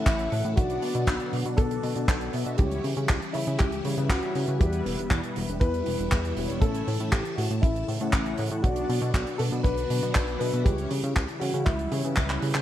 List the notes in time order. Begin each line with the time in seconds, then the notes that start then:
Already playing: C#3 E3 A3 C#4 E4 A4 F#5
0.06 A1 E4, kick, clap, closed hi-hat
0.19 closed hi-hat
0.32 A2, open hi-hat
0.44 A2, closed hi-hat
0.56 B1 B2 D3 F#3 B3 D4 F#4 D5, kick, closed hi-hat
0.70 closed hi-hat
0.82 B2, open hi-hat
0.95 B2, closed hi-hat
1.07 B1, kick, clap, closed hi-hat
1.20 closed hi-hat
1.33 B2, open hi-hat
1.45 B2, closed hi-hat
1.57 B1 A4, kick, closed hi-hat
1.71 closed hi-hat
1.83 B2, open hi-hat
1.96 B2, closed hi-hat
2.08 B1, kick, clap, closed hi-hat
2.21 closed hi-hat
2.33 B2 B3 D4 F#4 E5, open hi-hat
2.46 B2, closed hi-hat
2.57 C#2 C#3 E3 G3 C#4 E4 G4 C#5, kick, closed hi-hat
2.71 closed hi-hat
2.84 C#3, open hi-hat
2.97 C#3, closed hi-hat
3.09 C#2, kick, clap, closed hi-hat
3.22 closed hi-hat
3.33 C#3 E4, open hi-hat
3.47 C#3, closed hi-hat
3.58 C#2 G4, kick, clap, closed hi-hat
3.72 closed hi-hat
3.85 C#3 G3 C#4 E4 C#5, open hi-hat
3.98 C#3 G3 C#4 E4 B4, closed hi-hat
4.09 C#2 F#4, kick, clap, closed hi-hat
4.22 closed hi-hat
4.35 C#3, open hi-hat
4.48 C#3, closed hi-hat
4.59 E2 B2 E3 G3 B3 E4 G4 B4, kick, closed hi-hat
4.73 closed hi-hat
4.86 E1, open hi-hat
4.98 E1, closed hi-hat
5.11 E2, kick, clap, closed hi-hat
5.23 closed hi-hat
5.36 E1, open hi-hat
5.48 E1, closed hi-hat
5.60 E2 B4, kick, closed hi-hat
5.74 closed hi-hat
5.86 E1, open hi-hat
5.99 E1, closed hi-hat
6.12 E2, kick, clap, closed hi-hat
6.25 closed hi-hat
6.37 E1 G3 B3 E4 C#5, open hi-hat
6.50 E1, closed hi-hat
6.61 A1 C#3 A3 C#4 E4 A4 C#5, kick, closed hi-hat
6.75 closed hi-hat
6.87 A2, open hi-hat
7.00 A2, closed hi-hat
7.11 A1 G4, kick, clap, closed hi-hat
7.25 closed hi-hat
7.36 A2 F#4, open hi-hat
7.50 A2, closed hi-hat
7.61 A1 E4, kick, closed hi-hat
7.76 closed hi-hat
7.88 A2, open hi-hat
8.01 A2 A3 C#4 E4 F#5, closed hi-hat
8.13 A1, kick, clap, closed hi-hat
8.26 closed hi-hat
8.38 A2, open hi-hat
8.50 A2, closed hi-hat
8.62 B1 B2 D3 F#3 B3 D4 F#4 D5, kick, closed hi-hat
8.76 closed hi-hat
8.89 B2, open hi-hat
9.01 B2, closed hi-hat
9.14 B1, kick, clap, closed hi-hat
9.27 closed hi-hat
9.38 B2 A4, open hi-hat
9.52 B2, closed hi-hat
9.63 B1 B4, kick, closed hi-hat
9.78 closed hi-hat
9.90 B2, open hi-hat
10.03 B2, closed hi-hat
10.15 B1, kick, clap, closed hi-hat
10.28 closed hi-hat
10.39 B2 B3 D4 F#4 B4 E5, open hi-hat
10.53 B2, closed hi-hat
10.64 C#2 C#3 E3 G3 C#4 E4 G4 C#5, kick, closed hi-hat
10.78 closed hi-hat
10.91 C#3, open hi-hat
11.03 C#3, closed hi-hat
11.16 C#2, kick, clap, closed hi-hat
11.28 closed hi-hat
11.40 C#3 F#4, open hi-hat
11.54 C#3, closed hi-hat
11.65 C#2 E4, kick, clap, closed hi-hat
11.79 closed hi-hat
11.92 C#3 G3 C#4 E4 C#5, open hi-hat
12.04 C#3 G3 C#4 E4 B4, closed hi-hat
12.16 C#2, kick, clap, closed hi-hat
12.29 clap, closed hi-hat
12.42 C#3, open hi-hat
12.54 C#3, clap